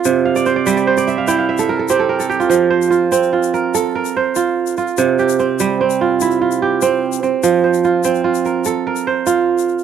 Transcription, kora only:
\new Staff \with { instrumentName = "Kora" } { \time 12/8 \key f \major \tempo 4. = 98 << { f'8 f''16 d''16 c''16 d''16 e''16 d''16 c''16 d''16 e''16 f''16 g''16 f''16 e''16 a'16 bes'16 a'16 g'16 a'16 bes'16 a'16 g'16 f'16~ | f'16 r16 c''8 f'4 f'8 bes'4 bes'8 c''4. f'8~ | f'8 g'8 c'4 c'8 f'4 f'8 g'4. c'8~ | c'8 c''8 f'4 f'8 bes'4 bes'8 c''4. r8 | } \\ { c4 r8 g4 r8 e'4 r8 c'4 r8 | f4 r8 c'4 r8 a'4 r8 f'4 r8 | c4 r8 g4 r8 e'4 r8 c'4 r8 | f4 r8 c'4 r8 a'4 r8 f'4 r8 | } >> }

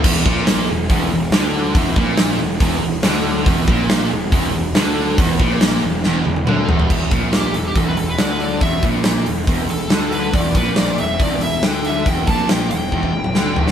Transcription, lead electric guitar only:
\new Staff \with { instrumentName = "Lead electric guitar" } { \time 4/4 \key e \minor \tempo 4 = 140 r1 | r1 | r1 | r1 |
r4 g'8 a'16 g'16 a'16 b'16 a'16 b'16 d''16 b'16 d''8 | e''8 r2 a'4 b'8 | d''8 b'8 d''8 e''8 d''8 e''8 g''8 e''8 | g''8 a''8 g''8 g''2~ g''8 | }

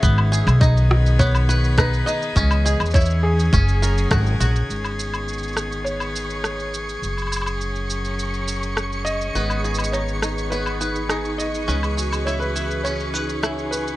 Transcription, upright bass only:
\new Staff \with { instrumentName = "Upright bass" } { \clef bass \time 4/4 \key gis \minor \tempo 4 = 103 gis,,8. b,,2~ b,,8. r8 | cis,8. e,4~ e,16 fis,,4 gis,,16 r16 ais,,16 r16 | gis,,1 | fis,,1 |
gis,,1 | cis,1 | }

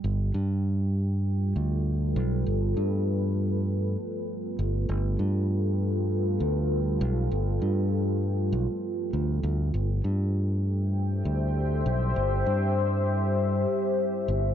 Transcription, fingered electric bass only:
\new Staff \with { instrumentName = "Fingered electric bass" } { \clef bass \time 4/4 \key g \mixolydian \tempo 4 = 99 g,,8 g,2 d,4 b,,8 | g,,8 g,2 r4 g,,8 | g,,8 g,2 d,4 b,,8 | g,,8 g,4. b,,8 r8 d,8 d,8 |
g,,8 g,2 d,4 b,,8 | g,,8 g,2 r4 g,,8 | }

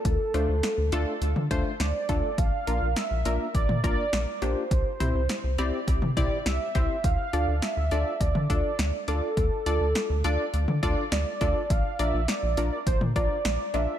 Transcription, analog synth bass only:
\new Staff \with { instrumentName = "Analog synth bass" } { \clef bass \time 4/4 \key d \minor \tempo 4 = 103 d,16 r16 d,16 d,16 r16 d,16 d,16 r16 d,16 d16 d,16 r16 d,16 r16 d,16 r16 | bes,,16 r16 bes,,16 bes,,16 r16 bes,,16 bes,,16 r16 bes,,16 bes,16 bes,,16 r16 bes,,16 r16 bes,,16 r16 | c,16 r16 c,16 c,16 r16 c,16 c,16 r16 c,16 c16 c,16 r16 c,16 r16 c,16 r16 | d,16 r16 d,16 d,16 r16 d,16 d,16 r16 d,16 d16 d,16 r16 d,16 r16 d,16 r16 |
d,16 r16 d,16 d,16 r16 d,16 d,16 r16 d,16 d16 d,16 r16 d,16 r16 d,16 r16 | bes,,16 r16 bes,,16 bes,,16 r16 bes,,16 bes,,16 r16 bes,,16 bes,16 bes,,16 r16 bes,,16 r16 bes,,16 r16 | }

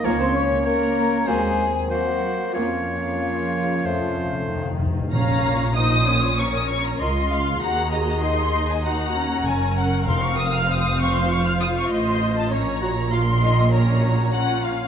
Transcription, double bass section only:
\new Staff \with { instrumentName = "Double bass section" } { \clef bass \time 4/4 \key bes \minor \tempo 4 = 98 des,4 r4 ees,4 r4 | f,4 r4 f,4 r4 | bes,,2. des,4 | ees,2. ges,,4 |
f,,2. a,,4 | bes,,1 | }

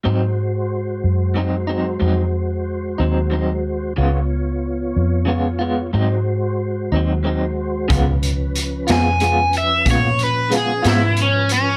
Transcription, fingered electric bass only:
\new Staff \with { instrumentName = "Fingered electric bass" } { \clef bass \time 12/8 \key aes \mixolydian \tempo 4. = 61 aes,4. ges,4. f,4. ees,4. | des,4. f,4. aes,4. ees,4. | \key des \mixolydian des,4. f,4. bes,4. aes,4. | }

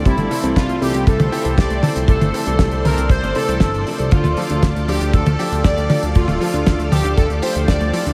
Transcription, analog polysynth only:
\new Staff \with { instrumentName = "Analog polysynth" } { \time 4/4 \key d \minor \tempo 4 = 118 e'4 f'8 g'8 a'4 d''8. r16 | a'4. bes'8 c''8 a'4 r8 | f'4. g'8 a'4 d''8. r16 | f'4. g'8 a'8 c''8 d''8. r16 | }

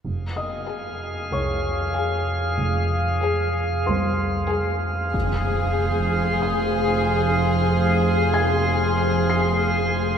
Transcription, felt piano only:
\new Staff \with { instrumentName = "Felt piano" } { \time 4/4 \key f \minor \tempo 4 = 94 r8 <ees'' ees'''>4. <des'' des'''>2~ | <des'' des'''>4 r4 <c'' c'''>2 | r2 ees'''2~ | ees'''4 <aes'' aes'''>4. c''''4. | }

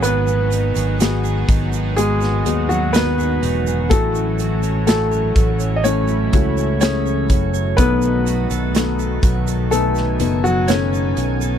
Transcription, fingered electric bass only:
\new Staff \with { instrumentName = "Fingered electric bass" } { \clef bass \time 4/4 \key gis \phrygian \tempo 4 = 62 gis,,8. gis,,8. gis,,4 dis,4 e,,8 | a,,4. a,,4 cis,4 fis,,8 | b,,8. b,,8. b,,4 fis,,4 b,,8 | }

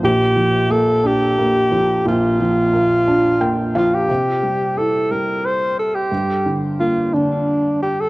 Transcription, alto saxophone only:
\new Staff \with { instrumentName = "Alto saxophone" } { \time 6/8 \key c \mixolydian \tempo 4. = 59 g'4 a'8 g'4. | f'2~ f'8 f'16 g'16~ | g'4 a'8 bes'8 c''8 a'16 g'16~ | g'4 f'8 d'4 g'16 a'16 | }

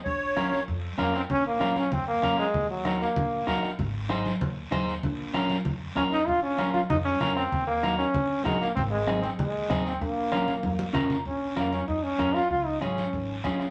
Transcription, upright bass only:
\new Staff \with { instrumentName = "Upright bass" } { \clef bass \time 4/4 \key bes \minor \tempo 4 = 193 bes,,2 f,4 f,4 | bes,,2 f,4 f,4 | ees,2 bes,,4 bes,,4 | aes,,2 ees,4 ees,4 |
bes,,2 f,4 f,4 | bes,,2 f,4 f,4 | ees,2 bes,,4 bes,,4 | aes,,2 ees,4 ees,4 |
bes,,2 f,4 f,4 | bes,,4 f,4 f,4 f,4 | des,4 aes,,4 aes,,4 bes,,4 | }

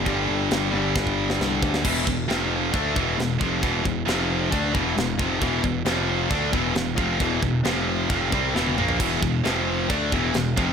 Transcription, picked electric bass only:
\new Staff \with { instrumentName = "Picked electric bass" } { \clef bass \time 4/4 \key e \phrygian \tempo 4 = 134 g,,8 g,,8 g,,8 g,,8 g,,4 c,8 d,8 | e,,8 e,,8 f,,4 d,8 e,,8 e,,8 f,,8 | e,,8 e,,8 f,,4 d,8 e,,8 e,,8 f,,8 | e,,8 e,,8 f,,4 d,8 e,,8 e,,8 f,,8 |
e,,8 e,,8 f,,4 f,,8 c,8 e,,8 ais,,8 | e,,8 e,,8 f,,4 d,8 e,,8 e,,8 f,,8 | }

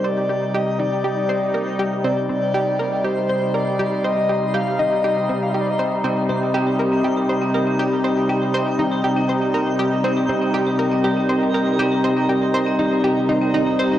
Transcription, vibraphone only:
\new Staff \with { instrumentName = "Vibraphone" } { \time 4/4 \key c \minor \tempo 4 = 120 r1 | r1 | r1 | c'16 r16 g'16 r16 c'16 g'16 c'16 c'16 r16 g'16 r16 c'16 g'16 c'16 c'16 r16 |
g'16 r16 c'16 g'16 c'16 c'16 r16 g'16 r16 c'16 g'16 c'16 c'16 r16 g'16 r16 | c'16 g'16 c'16 c'16 r16 g'16 r16 c'16 g'16 c'16 c'16 r16 g'16 r16 c'16 g'16 | c'16 c'16 r16 g'16 r16 c'16 g'16 c'16 c'16 r16 c''16 c'16 ees'16 c'16 g'16 c'16 | }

